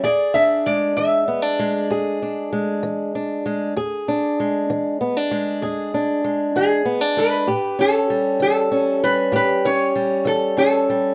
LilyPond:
<<
  \new Staff \with { instrumentName = "Resonator guitar played with a steel bar" } { \time 12/8 \key e \mixolydian \tempo 4. = 65 d''8 e''8 d''8 e''1 r8 | r1 r8 gis'4 b'8~ | b'8 a'4 a'4 b'8 b'8 cis''4 a'8 a'4 | }
  \new Staff \with { instrumentName = "Steel-string acoustic guitar" } { \clef bass \time 12/8 \key e \mixolydian << { gis'8 d'8 gis4 b16 d'16 gis8 gis'8 d'8 gis4 d'8 gis8 | gis'8 d'8 gis4 b16 d'16 gis8 gis'8 d'8 gis4 b16 d'16 gis8 | g'8 cis'8 g4 cis'8 g8 g'8 cis'8 g4 cis'8 g8 | } \\ { e,4 r8 e4 r8 e,4 r8 e4 r8 | e,4 r8 e4 r8 e,4 r8 e4 r8 | a,4 r8 e4 r8 a,4 r8 e4 r8 | } >> }
>>